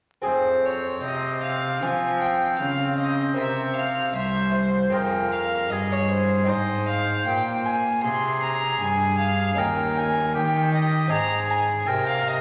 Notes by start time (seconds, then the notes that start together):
0.22 C4 G#4 C5
0.26 F2 C4
0.65 C#5
1.03 C3 D#5
1.43 F5
1.82 F3 G#5
2.21 G5
2.59 C#3 F5
2.98 D#5
3.34 C3 C4 A#4 C5 E5
3.38 C3
3.76 F5
4.15 C2 C5 E5
4.54 C5
4.90 F2 C4 G#4 C5 G5
4.94 F2 A#4
5.32 F5
5.70 G2 G#4 D#5
5.92 C#5
6.11 C5
6.43 G#3 C4 D#4
6.48 G#2 C5 D#5
6.88 F5
7.27 A#2 G5
7.66 G#5
8.04 C3 G#4 C6
8.43 A#5
8.81 G2 G#5
9.19 F5
9.54 D#2 C#4 D#4 A#4
9.59 D#2 G5
9.98 G#5
10.35 D#3 G4 G5
10.74 D#5
11.07 G#2 C4 D#4 G#4
11.12 G#2 A#5
11.50 G#5
11.87 C3 A#4 G5
12.09 F5
12.28 D#5